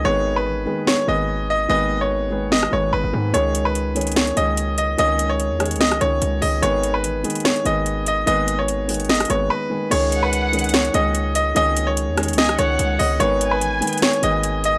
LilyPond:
<<
  \new Staff \with { instrumentName = "Violin section" } { \time 4/4 \key cis \dorian \tempo 4 = 146 r1 | r1 | r1 | r1 |
r1 | r1 | r8 fis''2~ fis''8 r4 | r2 gis''8 fis''4. |
r8 gis''2~ gis''8 r4 | }
  \new Staff \with { instrumentName = "Grand piano" } { \time 4/4 \key cis \dorian cis''8. b'4~ b'16 cis''8 dis''4 dis''8 | dis''8. cis''4~ cis''16 dis''8 cis''8 b'4 | cis''8. b'4~ b'16 cis''8 dis''4 dis''8 | dis''8. cis''4~ cis''16 dis''8 cis''4 dis''8 |
cis''8. b'4~ b'16 cis''8 dis''4 dis''8 | dis''8. cis''4~ cis''16 dis''8 cis''8 b'4 | cis''8. b'4~ b'16 cis''8 dis''4 dis''8 | dis''8. cis''4~ cis''16 dis''8 cis''4 dis''8 |
cis''8. b'4~ b'16 cis''8 dis''4 dis''8 | }
  \new Staff \with { instrumentName = "Grand piano" } { \time 4/4 \key cis \dorian <dis gis b gis' b'>4. <dis gis b gis' b'>4 <dis gis b gis' b'>4. | <dis gis b gis' b'>4. <dis gis b gis' b'>4 <dis gis b gis' b'>4 <dis gis b gis' b'>8 | <dis gis cis' gis' cis''>4. <dis gis cis' gis' cis''>4 <dis gis cis' gis' cis''>4. | <dis gis cis' gis' cis''>4. <dis gis cis' gis' cis''>4 <dis gis cis' gis' cis''>4 <dis gis cis' gis' cis''>8 |
<dis gis b gis' b'>4. <dis gis b gis' b'>4 <dis gis b gis' b'>4. | <dis gis b gis' b'>4. <dis gis b gis' b'>4 <dis gis b gis' b'>4 <dis gis b gis' b'>8 | <dis gis cis' gis' cis''>4. <dis gis cis' gis' cis''>4 <dis gis cis' gis' cis''>4. | <dis gis cis' gis' cis''>4. <dis gis cis' gis' cis''>4 <dis gis cis' gis' cis''>4 <dis gis cis' gis' cis''>8 |
<dis gis b gis' b'>4. <dis gis b gis' b'>4 <dis gis b gis' b'>4. | }
  \new Staff \with { instrumentName = "808-style bass" } { \clef bass \time 4/4 \key cis \dorian gis,,4 a,,16 gis,,16 r4 gis,,4. | gis,,2~ gis,,8 gis,,8 gis,,16 gis,,16 gis,8 | cis,2~ cis,8 cis,4. | cis,4~ cis,16 e,8~ e,32 cis,8~ cis,32 cis,8 cis,8 cis,8 |
gis,,4 a,,16 gis,,16 r4 gis,,4. | gis,,2~ gis,,8 gis,,8 r4 | cis,2~ cis,8 cis,4. | cis,4~ cis,16 e,8~ e,32 cis,8~ cis,32 cis,8 cis,8 cis,8 |
gis,,4 a,,16 gis,,16 r4 gis,,4. | }
  \new DrumStaff \with { instrumentName = "Drums" } \drummode { \time 4/4 r4 r4 sn4 r4 | r4 r4 sn16 ss8. r4 | hh8 hh8 hh8 hh32 hh32 hh32 hh32 <hh sn>16 hh16 hh8 hh8 hh8 | hh8 hh8 hh8 <hh ss>32 hh32 hh32 hh32 <hh sn>16 <hh ss>16 hh8 hh8 hho8 |
hh8 hh8 hh8 hh32 hh32 hh32 hh32 <hh sn>16 hh16 hh8 hh8 hh8 | hh8 hh8 hh8 <hh hho>32 hh32 hh32 hh32 <hh sn>32 hh32 <hh ss>32 hh32 hh8 r4 | <cymc hh>8 hh8 hh8 hh32 hh32 hh32 hh32 <hh sn>16 hh16 hh8 hh8 hh8 | hh8 hh8 hh8 <hh ss>32 hh32 hh32 hh32 <hh sn>16 <hh ss>16 hh8 hh8 hho8 |
hh8 hh8 hh8 hh32 hh32 hh32 hh32 sn16 hh16 hh8 hh8 hh8 | }
>>